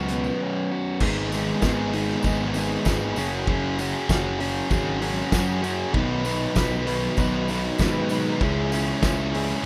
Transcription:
Already playing: C#2 F#2 F#3 B3 C#4 F#4 B4
0.08 B3, closed hi-hat
0.24 tambourine
0.42 C#4
0.72 F#4
1.00 G#1 G#2 D#3 G#3 B3 D#4 G#4, kick, crash
1.31 G#2 D#3 G#3, open hi-hat, tambourine
1.35 G#3 B3 D#4 G#4
1.62 G#1 G#2 D#3 G#3 B3 D#4 G#4, kick, snare, tambourine
1.93 G#2 D#3 G#3 B3 D#4 G#4, open hi-hat
2.09 snare
2.23 G#1 G#2 D#3 G#3, kick, tambourine
2.27 B3 D#4 G#4
2.54 G#2 D#3 G#3, open hi-hat, tambourine
2.58 B3 D#4 G#4
2.85 G#1 G#2 D#3 G#3 B3 D#4 G#4, kick, snare, tambourine
3.16 F#1 F#3 C#4 F#4 G#4, open hi-hat, tambourine
3.47 F#3 C#4 F#4 G#4, kick
3.79 F#3 C#4 F#4 G#4, open hi-hat, tambourine
4.09 F#1 F#3 C#4 F#4 G#4, kick, snare, tambourine
4.40 F#3 C#4 F#4 G#4, open hi-hat
4.70 G#1 F#3 C#4 F#4 G#4, kick, tambourine
5.01 F#3 C#4 F#4 G#4, open hi-hat
5.32 F#2 F#3 C#4 F#4 G#4, kick, snare, tambourine
5.64 F#3 C#4 F#4 G#4, open hi-hat, tambourine
5.93 B1 B2 D#3 F#3 B3 D#4 B4, kick
6.25 B2 D#3 F#3 B3 D#4 B4, open hi-hat, tambourine
6.55 B1 B2 D#3 F#3 B3 D#4 B4, kick, snare, tambourine
6.86 B2 D#3 F#3 B3 D#4 B4, open hi-hat
7.17 B1 B2 D#3 F#3 B3 D#4 B4, kick, tambourine
7.48 B2 D#3 F#3 B3 D#4 B4, open hi-hat, tambourine
7.78 G#2 B2 D#3 F#3 B3 D#4 B4, kick, snare, tambourine
8.09 B2 D#3 F#3 B3 D#4 B4, open hi-hat, tambourine
8.41 C#2 C#3 G#3 C#4 E4 G#4, kick, tambourine
8.72 C#3 G#3 C#4 E4 G#4, open hi-hat, tambourine
9.02 C#2 C#3 G#3 C#4 E4 G#4, kick, snare, tambourine
9.34 C#3 G#3 C#4 E4 G#4, open hi-hat
9.50 snare

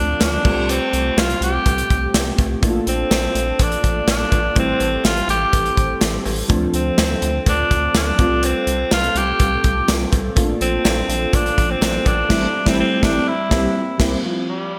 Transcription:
Already playing: D2 F3 A3 C4 D4 F4 A4
0.20 D2 D4, snare, closed hi-hat, tambourine, cowbell
0.44 C2 G3 A3 C4 F4 G4, kick, cowbell, crash
0.69 C4, closed hi-hat, cowbell
0.93 C2, closed hi-hat
1.17 C2 F4, snare, closed hi-hat, tambourine, cowbell
1.30 closed hi-hat
1.41 C2 G4, closed hi-hat
1.66 C2, kick, closed hi-hat, cowbell
1.78 closed hi-hat
1.90 C2, kick, closed hi-hat
2.14 C2, snare, closed hi-hat, tambourine, cowbell
2.38 C2, kick, closed hi-hat, cowbell
2.61 A#1 A3 A#3 D4 E4 F4 A4, kick, closed hi-hat, cowbell
2.70 F4
2.87 A#1 C4, closed hi-hat
3.11 A#1, snare, closed hi-hat, tambourine, cowbell
3.35 A#1, closed hi-hat
3.59 A#1 D4, kick, closed hi-hat, cowbell
3.72 closed hi-hat
3.84 A#1, kick, closed hi-hat
4.07 A#1 D4, snare, closed hi-hat, tambourine, cowbell
4.32 A#1, kick, closed hi-hat, cowbell
4.55 A1 G3 A3 C4 E4 G4 A4 C5, kick, closed hi-hat, cowbell
4.80 A1, closed hi-hat, cowbell
5.04 A1 F4, snare, closed hi-hat, tambourine, cowbell
5.17 closed hi-hat
5.28 A1 G4, closed hi-hat
5.53 A1, kick, closed hi-hat, cowbell
5.66 closed hi-hat
5.77 A1, kick, closed hi-hat
6.01 A1, snare, closed hi-hat, tambourine, cowbell
6.26 A1, open hi-hat, cowbell
6.48 D2 F3 A3 C4 D4 F4 A4 C5, kick, closed hi-hat, cowbell
6.73 D2 C4, closed hi-hat
6.98 D2, snare, closed hi-hat, tambourine, cowbell
7.22 D2, closed hi-hat
7.46 D2 D4, kick, closed hi-hat, cowbell
7.71 D2, kick, closed hi-hat
7.94 D2 D4, snare, closed hi-hat, tambourine, cowbell
8.18 C2 G3 A3 C4 F4 A4, kick, closed hi-hat, cowbell
8.43 C4, closed hi-hat, cowbell
8.67 C2, closed hi-hat
8.91 C2 F4, snare, closed hi-hat, tambourine, cowbell
9.03 closed hi-hat
9.15 C2 G4, closed hi-hat
9.40 C2, kick, closed hi-hat, cowbell
9.64 C2, kick, closed hi-hat
9.88 C2, snare, closed hi-hat, tambourine, cowbell
10.12 C2, kick, closed hi-hat, cowbell
10.35 A#1 A3 A#3 C4 D4 F4 A4, kick, closed hi-hat, cowbell
10.43 D4
10.61 A#1 C4, closed hi-hat
10.85 A#1, snare, closed hi-hat, tambourine, cowbell
11.09 A#1, closed hi-hat
11.33 A#1 D4, kick, closed hi-hat, cowbell
11.46 closed hi-hat
11.58 A#1, kick, closed hi-hat
11.71 C4
11.81 A#1, snare, closed hi-hat, tambourine, cowbell
12.06 A#1 D4, kick, closed hi-hat, cowbell
12.29 A1 G3 A3 C4 E4 A4, kick, snare, crash
12.65 A1 G3 A3 C4 E4 A4, kick, snare
12.80 C4
13.01 A1 G3 A3 C4 D4 E4 A4, kick, snare
13.28 E4
13.50 C2 G3 A#3 C4 E4 G4, kick, snare
13.98 C2 G3 A#3 C4 E4 G4, kick, snare, crash
14.23 F3 G3 C4 F4
14.49 G3

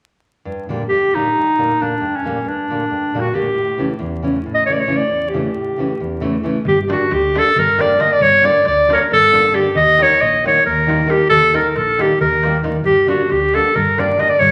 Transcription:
0.45 G2
0.69 A#2 D3 G3 A#3
0.88 G2 G4
1.14 A#2 D3 G3 A#3 D#4
1.37 G2
1.57 A#2 D3 G3 A#3
1.80 A#2 D3 G3 A#3 D4
2.00 G2
2.16 C#4
2.24 A#2 D3 G3 A#3
2.45 G2
2.49 D4
2.70 A#2 D3 G3 A#3
2.90 G2
3.14 A#2 D3 G3 A#3
3.20 F#4
3.34 A#2 D3 G3 A#3 G4
3.54 A2
3.78 C#3 E3 A3 C#4
3.99 E2
4.23 C#3 E3 A3 C#4
4.46 A2
4.54 D#5
4.66 C#3 E3 A3 C#4 C#5
4.73 D5
4.79 C#5
4.87 C#3 E3 A3 C#4
4.97 D5
5.09 E2
5.29 G4
5.34 C#3 E3 A3 C#4
5.55 A2
5.78 C#3 E3 A3 C#4
6.00 E2
6.21 C#3 E3 A3 C#4
6.43 C#3 E3 A3 C#4
6.65 G1 G4, darbuka dum
6.78 darbuka tek
6.88 D3 G3 A#3 D4, darbuka tek
6.92 F#4
7.01 darbuka tek
7.11 D2 G4, darbuka tek
7.24 darbuka tek
7.34 D3 G3 A#3 D4, darbuka tek
7.38 A4
7.46 darbuka tek
7.56 G1 A#4, darbuka dum
7.67 darbuka tek
7.78 D3 G3 A#3 D4 D5, darbuka tek
7.98 D3 G3 A#3 D4 D#5, darbuka tek
8.10 D5, darbuka tek
8.20 G1 C#5, darbuka dum
8.42 D3 G3 A#3 D4 D5, darbuka tek
8.55 darbuka tek
8.65 D2 D5, darbuka tek
8.77 darbuka tek
8.88 D3 G3 A#3 D4, darbuka tek
8.92 A#4 C#5
9.01 A#4, darbuka tek
9.12 G1 A4, darbuka dum
9.23 darbuka tek
9.32 D3 G3 A#3 D4, darbuka tek
9.52 D3 G3 A#3 D4 G4, darbuka tek
9.65 darbuka tek
9.75 D#2 D#5, darbuka dum
9.98 D#3 G3 A#3 D#4, darbuka tek
10.02 C#5
10.10 darbuka tek
10.21 A#1 D#5, darbuka tek
10.33 darbuka tek
10.44 D#3 G3 A#3 D#4 C#5, darbuka tek
10.57 darbuka tek
10.66 D#2 A#4, darbuka dum
10.79 darbuka tek
10.87 D#3 G3 A#3 D#4, darbuka tek
11.06 D#3 G3 A#3 D#4, darbuka tek
11.11 G4
11.19 darbuka tek
11.29 D#2 A4, darbuka dum
11.43 darbuka tek
11.52 D#3 G3 A#3 D#4 A#4, darbuka tek
11.65 darbuka tek
11.69 A#4
11.76 A#1 A4, darbuka tek
11.88 darbuka tek
11.98 D#3 G3 A#3 D#4 G4, darbuka tek
12.11 darbuka tek
12.21 D#2 A#4, darbuka dum
12.33 darbuka tek
12.43 D#3 G3 A#3 D#4, darbuka tek
12.54 darbuka tek
12.63 D#3 G3 A#3 D#4, darbuka tek
12.74 darbuka tek
12.84 G2 G4, darbuka dum
12.97 darbuka tek
13.07 D3 G3 A#3 D4 F#4, darbuka tek
13.20 darbuka tek
13.30 D2 G4, darbuka tek
13.42 darbuka tek
13.54 D3 G3 A#3 D4 A4, darbuka tek
13.65 darbuka tek
13.75 G2 A#4, darbuka dum
13.87 darbuka tek
13.98 D3 G3 A#3 D4 D5, darbuka tek
14.18 D3 G3 A#3 D4 D#5, darbuka tek
14.29 D5, darbuka tek
14.39 G2 C#5, darbuka dum

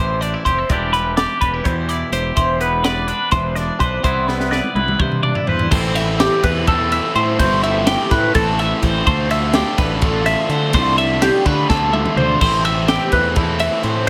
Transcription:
Already playing: A1 A2 E3 A3 C4 E4 G4 C5
0.21 D4 D5, closed hi-hat
0.34 E4
0.45 F1 G4 C5, kick, closed hi-hat
0.58 A4
0.69 E1 E3 G3 D4 E4 G4 D5, kick, closed hi-hat
0.93 B4, closed hi-hat
1.17 G4 D5, snare, closed hi-hat
1.41 E1 D4 B4, kick, closed hi-hat
1.54 E4
1.64 E2 B2 C5, kick, closed hi-hat
1.89 E4 D5, closed hi-hat
2.12 E1 G4 C5, closed hi-hat
2.36 E1 E3 C5, kick, closed hi-hat
2.60 B3 B4, closed hi-hat
2.84 B4 D5, snare, closed hi-hat
3.08 D4 B4, closed hi-hat
3.31 E1 E3 C5, kick, snare, closed hi-hat
3.56 D4 D5, snare, closed hi-hat
3.79 B1 B4 C5, kick, closed hi-hat
4.03 C2 C3 G3 B3 E4 B4 C5, kick, closed hi-hat
4.28 B3 B4, snare
4.40 snare
4.51 B4 D5, snare
4.64 high tom
4.75 C2 E4 B4, high tom
4.88 mid tom
4.99 G2 C3 C5, kick, mid tom
5.12 mid tom
5.23 D4 D5, mid tom
5.35 E4, floor tom
5.47 E2 B4 C5, floor tom
5.59 floor tom
5.71 A1 A2 E3 A3 C4 E4 C5, kick, crash
5.95 E5, snare, ride
6.20 G4, snare, ride
6.43 E2 B4, kick, ride
6.67 A2 E3 A3 C4 E4 A4, kick, ride
6.92 E5, ride
7.15 A2 C5, ride
7.39 G1 A2 E3 A3 C4 E4 C5, kick, ride
7.63 E5, ride
7.87 G4, snare, ride
8.11 A2 B4, kick, snare, ride
8.34 A1 A2 E3 A3 C4 E4 A4, kick, snare, ride
8.59 E5, snare, ride
8.82 A1 C5, kick, ride
9.05 D2 D3 A3 D4 F4 C5, kick, ride
9.30 E5, ride
9.53 G4, snare, ride
9.78 A1 B4, kick, ride
10.01 D3 A3 D4 F4 A4, kick, ride
10.26 E5, snare, ride
10.49 D3 C5, ride
10.73 C2 D3 A3 D4 F4 C5, kick, ride
10.98 E5, ride
11.22 G4, snare, ride
11.46 D3 B4, kick, ride
11.69 D2 D3 A3 D4 F4 A4, kick, snare
11.93 E5, high tom
12.06 mid tom
12.16 D2 C5, mid tom
12.40 A1 A2 E3 A3 C4 E4 C5, kick, crash
12.65 E5, ride
12.88 G4, snare, ride
13.12 E2 B4, kick, ride
13.36 A2 E3 A3 C4 E4 A4, kick, ride
13.59 E5, ride
13.83 A2 C5, ride

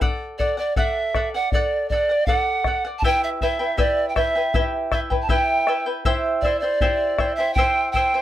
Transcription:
0.01 A4 D5 F#5, bombo low
0.38 A4 D5 F#5, bombo low
0.57 D5 F#5
0.76 A4 D5 E5 F#5, bombo low
1.15 A4 D5 F#5, bombo rim, bombo low
1.34 D5 F#5
1.52 A4 D5 F#5, bombo low
1.89 A4 D5, bombo low
1.93 F#5
2.09 D5 F#5
2.26 A4 D5 F#5, bombo low
2.64 A4 D5 F#5, bombo rim, bombo low
2.85 D5 F#5
2.99 A5, bombo low
3.04 E4 G4 B4 E5 G5
3.24 E5
3.41 E4 B4 E5 G5, bombo low
3.59 E4 B4 G5
3.77 E4 G4 B4 D5 E5 G5, bombo low
4.09 G5
4.16 E4 B4 E5 G5, bombo rim, bombo low
4.35 E4 B4 G5
4.54 E4 G4 B4 E5 G5, bombo low
4.92 E4 B4 E5 G5, bombo rim, bombo low
5.10 E4 B4 G5, bombo low
5.22 A5
5.29 E4 G4 B4 E5 G5, bombo low
5.67 E4 B4 E5 G5, bombo rim
5.86 E4 B4 G5
6.05 E4 G4 C5 E5 G5, bombo low
6.42 E4 C5 D5 E5, bombo low
6.46 G5
6.60 D5 G5
6.64 E4 C5
6.81 E4 G4 C5 E5 G5, bombo low
7.18 E4 C5 E5 G5, bombo rim, bombo low
7.36 C5 E5 G5
7.40 E4
7.54 G4 G5, bombo low
7.58 E4 C5 E5 G5
7.92 E5 G5, bombo low
7.96 E4 C5 G5
8.14 E4 C5 G5

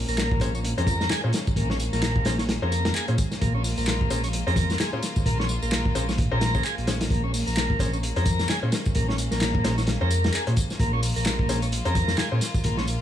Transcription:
Already playing: G#3 A#3 C#4
0.08 A#1 A#3, tambourine
0.18 snare, clap, closed hi-hat, tambourine
0.31 kick
0.40 A#1 C#4 G#4 C5, kick, closed hi-hat, tambourine
0.55 C#4, tambourine
0.64 closed hi-hat, tambourine
0.78 F2 C#4 G#4 A#4 C5, closed hi-hat
0.87 kick, closed hi-hat, tambourine
1.01 snare, tambourine
1.10 G#4, snare, clap, closed hi-hat, tambourine
1.24 A#2 C#4 G#4 C5
1.33 snare, closed hi-hat, tambourine
1.47 kick, tambourine
1.56 A#1 A#3, kick, closed hi-hat, tambourine
1.70 C#4, snare
1.80 closed hi-hat, tambourine
1.93 A#1 A#3, snare, tambourine
2.02 snare, clap, closed hi-hat, tambourine
2.16 kick
2.25 A#1 C#4 G#4 C5, snare, closed hi-hat, tambourine
2.38 C#4, snare, tambourine
2.49 snare, closed hi-hat, tambourine
2.62 F2 C#4 G#4 A#4 C5
2.72 closed hi-hat, tambourine
2.85 snare, tambourine
2.95 G#4, clap, closed hi-hat, tambourine
3.08 A#2 C#4 G#4 C5, closed hi-hat
3.18 kick, closed hi-hat, tambourine
3.31 snare, tambourine
3.41 A#1 A#3 F4, kick, closed hi-hat, tambourine
3.55 C#4
3.64 open hi-hat, tambourine
3.77 A#1 A#3, tambourine
3.87 snare, clap, closed hi-hat, tambourine
4.01 kick
4.10 A#1 C#4 G#4 C5, closed hi-hat, tambourine
4.24 C#4, closed hi-hat, tambourine
4.33 closed hi-hat, tambourine
4.47 F2 C#4 G#4 A#4 C5, closed hi-hat
4.56 kick, closed hi-hat, tambourine
4.70 snare, tambourine
4.79 G#4, snare, clap, closed hi-hat, tambourine
4.93 A#2 C#4 G#4 C5
5.03 snare, closed hi-hat, tambourine
5.16 kick, tambourine
5.26 A#1 A#3, kick, closed hi-hat, tambourine
5.39 C#4, snare
5.49 tambourine
5.62 A#1 A#3, tambourine
5.72 snare, clap, closed hi-hat, tambourine
5.85 kick
5.95 A#1 C#4 G#4 C5, closed hi-hat, tambourine
6.09 C#4, snare, tambourine
6.18 kick, closed hi-hat, tambourine
6.32 A#1 C#4 G#4 A#4 C5
6.41 snare, closed hi-hat, tambourine
6.55 C#4 G#4 C5, kick, tambourine
6.64 G#4, clap, closed hi-hat, tambourine
6.78 A#1, closed hi-hat
6.87 C#4 G#4 C5, snare, closed hi-hat, tambourine
7.01 snare, closed hi-hat, tambourine
7.10 A#1 A#3 C#4, kick, closed hi-hat, tambourine
7.24 C#4
7.34 open hi-hat, tambourine
7.47 A#1 A#3, tambourine
7.57 snare, clap, closed hi-hat, tambourine
7.70 kick
7.79 A#1 C#4 G#4 C5, kick, closed hi-hat, tambourine
7.93 C#4, tambourine
8.03 closed hi-hat, tambourine
8.16 F2 C#4 G#4 A#4 C5, closed hi-hat
8.25 kick, closed hi-hat, tambourine
8.39 snare, tambourine
8.49 G#4, snare, clap, closed hi-hat, tambourine
8.63 A#2 C#4 G#4 C5
8.72 snare, closed hi-hat, tambourine
8.85 kick, tambourine
8.95 A#1 A#3, kick, closed hi-hat, tambourine
9.08 C#4, snare
9.18 closed hi-hat, tambourine
9.31 A#1 A#3, snare, tambourine
9.41 snare, clap, closed hi-hat, tambourine
9.55 kick
9.64 A#1 C#4 G#4 C5, snare, closed hi-hat, tambourine
9.78 C#4, snare, tambourine
9.87 snare, closed hi-hat, tambourine
10.01 F2 C#4 G#4 A#4 C5
10.11 closed hi-hat, tambourine
10.24 snare, tambourine
10.34 G#4, clap, closed hi-hat, tambourine
10.47 A#2 C#4 G#4 C5, closed hi-hat
10.56 kick, closed hi-hat, tambourine
10.70 snare, tambourine
10.80 A#1 A#3 F4, kick, closed hi-hat, tambourine
10.93 C#4
11.03 open hi-hat, tambourine
11.16 A#1 A#3, tambourine
11.26 snare, clap, closed hi-hat, tambourine
11.39 kick
11.49 A#1 C#4 G#4 C5, closed hi-hat, tambourine
11.62 C#4, closed hi-hat, tambourine
11.72 closed hi-hat, tambourine
11.85 F2 C#4 G#4 A#4 C5, closed hi-hat
11.95 kick, closed hi-hat, tambourine
12.08 snare, tambourine
12.18 G#4, snare, clap, closed hi-hat, tambourine
12.32 A#2 C#4 G#4 C5
12.41 snare, closed hi-hat, tambourine
12.54 kick, tambourine
12.64 A#1 A#3, kick, closed hi-hat, tambourine
12.77 C#4, snare
12.88 closed hi-hat, tambourine

